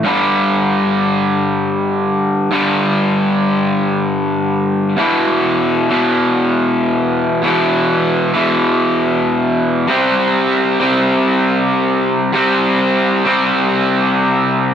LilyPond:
\new Staff \with { instrumentName = "Overdriven electric guitar" } { \clef bass \time 4/4 \key e \minor \tempo 4 = 98 <g, d g>1 | <g, d g>1 | <e, b, e>4. <e, b, e>2~ <e, b, e>8 | <e, b, e>4. <e, b, e>2~ <e, b, e>8 |
<c g c'>4. <c g c'>2~ <c g c'>8 | <c g c'>4. <c g c'>2~ <c g c'>8 | }